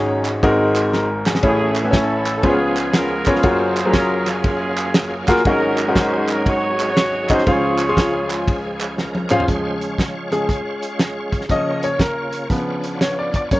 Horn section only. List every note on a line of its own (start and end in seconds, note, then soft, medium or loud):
0.00 0.40 C#4 medium
0.00 0.40 D#4 medium
0.00 0.27 G#4 medium
1.45 1.94 C#4 medium
1.45 1.94 E4 medium
1.45 1.84 G#4 loud
1.87 1.95 F#4 medium
1.96 2.42 C#4 medium
1.96 2.42 E4 medium
1.96 2.35 A4 medium
2.36 2.44 A4 medium
2.45 3.41 B3 medium
2.45 2.94 F4 medium
2.45 2.86 G#4 medium
2.87 2.95 G#4 medium
2.95 3.35 F4 medium
2.95 3.34 A#4 medium
3.36 3.87 F4 medium
3.36 4.27 G#4 medium
3.36 3.87 C5 loud
3.87 4.28 C#4 medium
3.87 4.28 F4 medium
3.87 4.29 A#4 loud
4.29 5.25 C#4 medium
4.29 5.25 F4 medium
4.29 5.29 G#4 medium
5.46 6.43 C#4 medium
5.46 5.87 F#4 medium
5.46 5.85 A#4 loud
5.88 6.85 D#4 medium
5.88 6.47 F#4 medium
5.88 6.29 C5 loud
6.30 6.47 A#4 medium
6.48 6.88 F#4 medium
6.48 6.88 C#5 loud
6.89 7.44 F#4 medium
6.89 7.28 C#5 loud
7.31 7.48 C5 loud
7.49 8.45 F4 medium
7.49 8.45 G#4 medium
7.49 8.32 C#5 loud